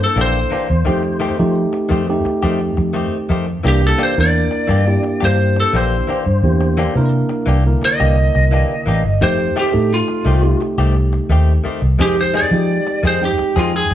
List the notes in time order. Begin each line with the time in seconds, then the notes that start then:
Already playing: A#3 D4 E4 A4
0.01 A4, muted clean electric guitar stroke
0.16 A#1 E3 A#3 D4 G4
0.21 C5
0.50 E3 A#3 D4 G4, muted fingered electric bass stroke
0.68 E2, muted clean electric guitar stroke
0.85 F2 D#3 A3 C4 D#4 G4
1.03 muted clean electric guitar stroke
1.20 D#3 A3 C4 G4
1.38 F3 A3 C4 D#4 G4, muted clean electric guitar stroke
1.73 muted clean electric guitar stroke
1.89 F2 D#3 A3 C4 G4
2.08 A3 C4 D#4 G4, muted clean electric guitar stroke
2.25 muted clean electric guitar stroke, muted fingered electric bass stroke
2.43 F2 D#3 A3 C4 G4
2.60 muted clean electric guitar stroke
2.77 F2, muted clean electric guitar stroke
2.93 D#3 A3 C4 G4
3.29 F2 D#3 A3 C4 G4
3.47 muted clean electric guitar stroke
3.63 C2 E3 A#3 D4 E4 G4
3.68 G4
3.82 muted clean electric guitar stroke
3.87 A4
3.98 E3 A#3 D4 G4
4.03 C5
4.16 E2 A#3 D4 E4 A#4, muted clean electric guitar stroke
4.21 D5
4.51 muted clean electric guitar stroke
4.67 G2 E3 A#3 D4 G4
4.86 A#3 D4 E4 G4, muted clean electric guitar stroke
5.03 muted clean electric guitar stroke
5.20 G2 E3 A#3 D4 G4
5.25 C5
5.38 muted clean electric guitar stroke
5.56 A4, muted clean electric guitar stroke
5.73 A#1 E3 A#3 D4 G4 C5
6.07 E3 A#3 D4 G4, muted fingered electric bass stroke
6.26 G2, muted clean electric guitar stroke
6.43 E2 A#3 D4 E4 G4
6.61 muted clean electric guitar stroke
6.77 E3 A#3 D4 G4
6.96 C3 A#3 D4 E4 A#4, muted clean electric guitar stroke
7.29 muted clean electric guitar stroke
7.46 C2 E3 A#3 D4 G4
7.65 D3 A#3 E4 A#4, muted clean electric guitar stroke
7.82 D#5, muted clean electric guitar stroke
8.00 C2 E3 A#3 D4 G4
8.17 muted clean electric guitar stroke
8.35 C2, muted clean electric guitar stroke
8.51 E3 A#3 D4 G4
8.86 A1 E3 A#3 D4 G4
9.04 G1, muted clean electric guitar stroke
9.21 F2 D#3 A3 C4 D#4 G4 C5
9.39 muted clean electric guitar stroke
9.56 D#3 A3 C4 G4
9.73 A2 A3 C4 D#4 A4, muted clean electric guitar stroke
9.94 F4
10.08 muted clean electric guitar stroke
10.25 C2 D#3 A3 C4 G4
10.42 A3 C4 D#4 G4, muted clean electric guitar stroke
10.61 muted clean electric guitar stroke
10.78 C2 D#3 A3 C4 G4
10.95 muted clean electric guitar stroke
11.13 muted clean electric guitar stroke
11.29 D#2 D#3 A3 C4 G4
11.64 D#3 A3 C4 G4, muted fingered electric bass stroke
11.82 C2
11.98 F2 D#3 G#3 C4 D#4 G4 G#4
12.17 C5, muted clean electric guitar stroke
12.34 D#3 G#3 C4 G#4 D5
12.51 F3 G#3 C4 D#4 G4, muted clean electric guitar stroke
12.87 muted clean electric guitar stroke
13.03 F2 D#3 G#3 C4 G#4
13.07 C5
13.21 G#3 C4 D#4 G4 G5, muted clean electric guitar stroke
13.38 muted clean electric guitar stroke, muted fingered electric bass stroke
13.56 F2 D#3 G#3 C4 F4 G#4
13.73 G#4, muted clean electric guitar stroke
13.91 muted clean electric guitar stroke